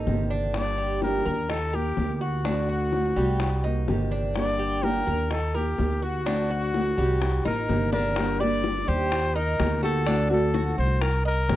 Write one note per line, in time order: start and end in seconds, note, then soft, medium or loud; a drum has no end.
0.00 0.29 D#4 medium
0.00 0.27 A4 medium
0.07 1.20 G1 medium
0.07 0.54 C3 medium
0.07 0.54 D#3 medium
0.07 0.54 A#3 medium
0.07 0.54 C4 medium
0.07 0.55 G4 medium
0.07 high bongo soft
0.07 low bongo medium
0.30 0.77 D4 medium
0.30 high bongo soft
0.54 1.01 D3 medium
0.54 1.01 G3 medium
0.54 1.02 A#3 medium
0.54 1.02 D4 medium
0.54 1.02 G4 medium
0.54 0.99 D5 loud
0.54 high bongo medium
0.78 1.24 G4 medium
1.02 1.25 D3 medium
1.02 1.25 G3 medium
1.02 1.25 A#3 medium
1.02 1.26 D4 medium
1.02 1.24 G4 medium
1.02 1.52 A#4 medium
1.02 high bongo medium
1.26 1.94 D#2 medium
1.26 1.49 A#3 soft
1.26 1.49 D4 soft
1.26 1.49 G4 soft
1.26 1.49 A#4 medium
1.26 high bongo soft
1.49 1.73 D#4 medium
1.49 1.76 A4 medium
1.49 muted nylon-string guitar stroke soft
1.49 high bongo medium
1.73 1.97 A#3 soft
1.73 1.97 D#4 soft
1.73 1.96 G4 soft
1.73 2.15 G4 medium
1.73 2.20 A#4 medium
1.73 high bongo soft
1.97 3.10 D2 medium
1.97 2.45 A#3 medium
1.97 2.45 D#4 medium
1.97 2.45 G4 medium
1.97 high bongo soft
1.97 low bongo medium
2.15 2.24 G4 medium
2.21 2.44 F#4 medium
2.21 4.13 F#4 medium
2.21 high bongo soft
2.44 2.91 D3 medium
2.44 2.92 A3 medium
2.44 2.92 C4 medium
2.44 2.68 D4 medium
2.44 2.93 F#4 medium
2.44 high bongo medium
2.68 3.15 F#4 medium
2.92 3.16 D3 medium
2.92 3.16 A3 medium
2.92 3.16 C4 medium
2.92 3.15 F#4 medium
2.92 high bongo medium
3.16 3.84 C2 medium
3.16 3.63 G3 medium
3.16 3.40 A3 soft
3.16 3.40 C4 soft
3.16 3.39 F#4 soft
3.16 high bongo soft
3.40 muted nylon-string guitar stroke medium
3.40 high bongo medium
3.64 3.87 A#3 soft
3.64 3.88 C4 soft
3.64 4.10 D#4 medium
3.64 3.87 G4 medium
3.64 high bongo soft
3.88 5.01 G1 medium
3.88 4.35 C3 medium
3.88 4.35 D#3 medium
3.88 4.35 A#3 medium
3.88 4.35 C4 medium
3.88 4.36 G4 medium
3.88 high bongo soft
3.88 low bongo medium
4.11 4.58 D4 medium
4.11 high bongo soft
4.35 4.82 D3 medium
4.35 4.82 G3 medium
4.35 4.83 A#3 medium
4.35 4.83 D4 medium
4.35 4.83 G4 medium
4.35 4.86 D5 loud
4.35 high bongo medium
4.59 5.06 G4 medium
4.83 5.06 D3 medium
4.83 5.07 G3 medium
4.83 5.07 A#3 medium
4.83 5.07 D4 medium
4.83 5.06 G4 medium
4.83 5.31 A#4 loud
4.83 high bongo medium
5.07 5.75 D#2 medium
5.07 5.30 A#3 soft
5.07 5.30 D4 soft
5.07 5.30 G4 soft
5.07 5.30 A#4 medium
5.07 high bongo soft
5.31 5.54 D#4 medium
5.31 5.57 A4 medium
5.31 muted nylon-string guitar stroke medium
5.31 high bongo medium
5.54 5.78 A#3 soft
5.54 5.78 D#4 soft
5.54 5.78 G4 soft
5.54 6.04 G4 medium
5.54 6.01 A#4 medium
5.54 high bongo soft
5.78 6.92 D2 loud
5.78 6.26 A#3 medium
5.78 6.26 D#4 medium
5.78 6.26 G4 medium
5.78 high bongo soft
5.78 low bongo medium
6.02 6.26 F#4 medium
6.02 7.45 F#4 medium
6.02 high bongo soft
6.26 6.73 D3 medium
6.26 6.73 A3 medium
6.26 6.74 C4 medium
6.26 6.49 D4 medium
6.26 6.74 F#4 medium
6.26 high bongo medium
6.50 6.96 F#4 medium
6.74 6.97 D3 medium
6.74 6.97 A3 medium
6.74 6.98 C4 medium
6.74 6.96 F#4 medium
6.74 high bongo medium
6.98 7.42 C2 medium
6.98 7.44 G3 medium
6.98 7.22 A3 soft
6.98 7.21 C4 soft
6.98 7.21 F#4 soft
6.98 high bongo soft
7.22 muted nylon-string guitar stroke medium
7.22 high bongo medium
7.45 7.68 A1 medium
7.45 7.69 A#3 soft
7.45 7.69 C4 soft
7.45 7.91 D#4 medium
7.45 7.68 G4 soft
7.45 7.90 A#4 medium
7.45 high bongo medium
7.69 8.82 G1 loud
7.69 8.16 C3 medium
7.69 8.16 D#3 medium
7.69 8.16 A#3 medium
7.69 8.17 C4 medium
7.69 8.17 G4 medium
7.69 low bongo medium
7.92 8.16 D4 medium
7.92 8.42 A#4 medium
7.92 low bongo medium
8.16 8.40 D3 medium
8.16 8.40 G3 medium
8.16 8.40 A#3 medium
8.16 8.40 D4 medium
8.16 8.39 G4 medium
8.16 high bongo medium
8.40 8.63 G3 medium
8.40 8.64 A#3 medium
8.40 8.64 D4 medium
8.40 8.63 G4 medium
8.40 8.86 D5 medium
8.40 8.90 D5 loud
8.40 high bongo soft
8.64 9.11 G3 soft
8.64 9.11 A#3 soft
8.64 9.12 D4 medium
8.64 9.12 G4 medium
8.64 high bongo medium
8.88 9.55 D#2 loud
8.88 9.34 G4 medium
8.88 9.37 C5 loud
9.12 muted nylon-string guitar stroke medium
9.12 high bongo medium
9.35 9.82 D#4 medium
9.35 9.83 A#4 medium
9.35 high bongo soft
9.59 10.72 D2 loud
9.59 9.82 D#3 soft
9.59 9.82 A#3 medium
9.59 9.83 D#4 medium
9.59 9.81 G4 medium
9.59 high bongo medium
9.59 low bongo medium
9.83 10.07 A#3 medium
9.83 10.06 D#4 medium
9.83 10.06 F#4 medium
9.83 10.06 G4 medium
9.83 10.27 A4 medium
9.83 high bongo soft
10.06 10.29 D3 medium
10.06 10.30 A3 medium
10.06 10.30 C4 medium
10.06 10.53 D4 medium
10.06 10.29 F#4 medium
10.06 high bongo medium
10.30 10.53 A3 medium
10.30 10.53 C4 medium
10.30 10.53 F#4 medium
10.30 10.75 A4 medium
10.30 high bongo soft
10.54 11.01 D3 soft
10.54 11.00 F#4 medium
10.54 high bongo medium
10.78 11.45 C2 loud
10.78 11.04 C5 medium
11.01 11.25 A#4 medium
11.01 11.26 A#4 medium
11.01 muted nylon-string guitar stroke medium
11.01 high bongo medium
11.25 11.56 A#4 loud
11.25 11.56 D#5 medium
11.49 11.56 G1 loud
11.49 11.56 D#3 soft
11.49 11.56 A#3 medium
11.49 11.56 C4 medium
11.49 11.56 G4 medium
11.49 high bongo medium
11.49 low bongo medium